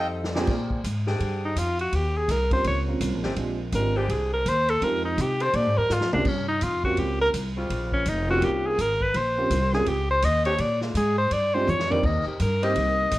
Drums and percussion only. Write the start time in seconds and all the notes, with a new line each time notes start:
0.24 snare
0.35 snare
0.47 kick, snare, crash
0.70 kick
0.84 hi-hat pedal, ride
1.07 snare
1.20 ride
1.56 hi-hat pedal, ride
1.79 ride
1.92 ride
2.28 snare, hi-hat pedal, ride
2.51 kick, ride
2.64 ride
3.01 hi-hat pedal, ride
3.23 snare
3.36 ride
3.72 hi-hat pedal, ride
4.10 ride
4.46 hi-hat pedal, ride
4.68 ride
4.82 ride
5.18 hi-hat pedal, ride
5.40 ride
5.53 ride
5.90 snare, hi-hat pedal
6.01 snare
6.13 mid tom
6.25 kick, crash
6.61 hi-hat pedal, ride
6.84 kick
6.97 ride
7.34 hi-hat pedal, ride
7.70 ride
7.92 kick
8.06 hi-hat pedal, ride
8.42 ride
8.79 hi-hat pedal, ride
9.01 kick
9.14 ride
9.50 hi-hat pedal, ride
9.73 snare
9.86 ride
10.23 hi-hat pedal, ride
10.45 ride
10.58 ride
10.81 snare
10.95 hi-hat pedal, ride
11.31 ride
11.67 hi-hat pedal, high tom
11.79 snare
11.91 floor tom
12.03 kick, crash
12.39 hi-hat pedal, ride
12.63 ride
12.75 ride
13.12 hi-hat pedal, ride